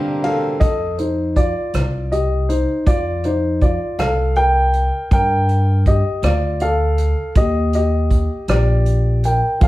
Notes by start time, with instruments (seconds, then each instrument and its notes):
Already playing: grand piano D3 G3 D4 G4 A#4 D5 G5, harmonium G3 A#3 C4
0.24 grand piano A4 F5, ride
0.60 upright bass F2, grand piano A4 D#5, kick, closed hi-hat
0.98 grand piano D#4 C5, closed hi-hat
1.36 grand piano F4 D5, kick, closed hi-hat
1.73 upright bass C2, cross-stick, closed hi-hat
2.12 grand piano G4 D#5, closed hi-hat
2.49 grand piano D#4 C5, closed hi-hat
2.86 upright bass F2, grand piano F4 D5, kick, closed hi-hat
3.24 grand piano D#4 C5, closed hi-hat
3.61 grand piano F4 D5, kick, closed hi-hat
3.98 upright bass C2, grand piano A4 F5, cross-stick, closed hi-hat
4.36 grand piano A#4 G5, closed hi-hat
4.73 closed hi-hat
5.11 upright bass G2, grand piano A#4 G5, kick, closed hi-hat
5.49 closed hi-hat
5.86 grand piano G4 D#5, kick, closed hi-hat
6.22 upright bass D2, grand piano F4 D5, cross-stick, closed hi-hat
6.60 grand piano A4 F5, closed hi-hat
6.98 closed hi-hat
7.35 upright bass D#2, grand piano G4 D#5, kick, closed hi-hat
7.73 grand piano G4 D#5, closed hi-hat
8.11 kick, closed hi-hat
8.48 upright bass A#1, grand piano G4 D5, cross-stick, closed hi-hat
8.86 closed hi-hat
9.24 grand piano A#4 G5, closed hi-hat
9.59 upright bass F2, harmonium D#3 F3 A3 C4 F4, grand piano F3 A4 F5, kick, closed hi-hat